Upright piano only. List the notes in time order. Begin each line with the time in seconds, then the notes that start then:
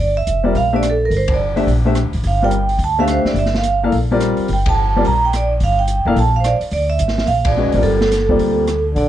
0.43 G3 C4 F4 A#4 D5
0.73 A3 D4 G4 C5 E5
1.56 A3 D4 G4 C5 E5
1.85 A3 D4 G4 C5 E5
2.42 G3 C4 F4 A#4 D5
2.99 A3 D4 G4 C5 E5
3.83 A#3 E4 A4 D5 F5
4.11 G3 C4 F4 A#4 D5
4.96 G3 C4 F4 A#4 D5
6.06 A#3 E4 A4 D5 F5
7.57 G#3 C#4 F#4 B4 D#5
7.74 G3 C4 F4 A#4 D5
8.29 G3 A#3 C4 F4 D5